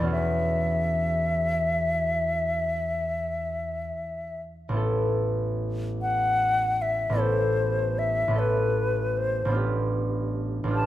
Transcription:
0.00 3.89 E2 soft
0.00 3.90 B3 soft
0.00 3.93 C#4 soft
0.00 1.49 D4 soft
0.00 0.11 D5 soft
0.05 3.95 F#4 soft
0.05 3.97 G#4 soft
0.12 4.39 E5 medium
4.69 7.08 A1 soft
4.69 7.11 B3 soft
4.74 7.13 E4 soft
4.74 7.15 A4 soft
6.02 6.83 F#5 medium
6.82 7.22 E5 medium
7.09 8.26 A1 soft
7.09 8.29 B3 soft
7.14 8.32 E4 soft
7.14 8.34 A4 soft
7.20 8.00 C5 medium
7.99 8.40 E5 medium
8.28 9.44 A1 soft
8.28 9.46 B3 soft
8.33 9.56 E4 soft
8.33 10.86 A4 soft
8.39 9.19 B4 medium
9.17 9.56 C5 soft
9.45 10.62 A1 soft
9.45 10.65 B3 soft
9.50 10.66 D4 soft
9.50 10.69 F4 soft
9.54 10.72 G4 soft
10.64 10.86 A1 soft
10.64 10.86 B3 soft
10.68 10.86 D4 soft
10.68 10.86 F4 soft
10.73 10.86 G4 soft
10.73 10.86 A5 medium

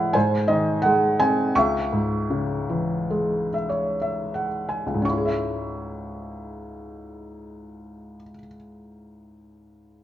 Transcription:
0.00 0.11 G#2 soft
0.00 0.12 E3 soft
0.00 0.14 G#3 soft
0.00 0.15 E4 soft
0.00 0.16 C#5 medium
0.00 0.17 E5 medium
0.00 0.15 F#5 medium
0.00 0.13 G#5 medium
0.13 1.52 G#2 soft
0.13 1.51 C5 soft
0.13 0.49 G#5 medium
0.48 1.52 D#3 soft
0.48 0.81 D#5 medium
0.82 1.54 G#3 soft
0.82 1.20 F#5 medium
1.20 1.55 C4 soft
1.20 1.56 G#5 medium
1.55 4.85 C#2 soft
1.55 3.52 E5 soft
1.55 3.96 C#6 medium
1.92 3.49 G#2 soft
2.30 3.96 C#3 soft
2.69 4.47 E3 soft
3.10 5.01 G#3 soft
3.54 3.68 E5 soft
3.69 3.98 C#5 soft
4.02 4.32 E5 soft
4.34 4.66 F#5 soft
4.69 5.02 G#5 soft
4.86 8.15 C#2 soft
4.94 8.23 G#2 soft
5.02 8.30 C#4 soft
5.02 8.33 C#6 soft
5.10 8.38 E4 soft
5.18 8.46 G#4 soft
5.25 8.54 E5 soft

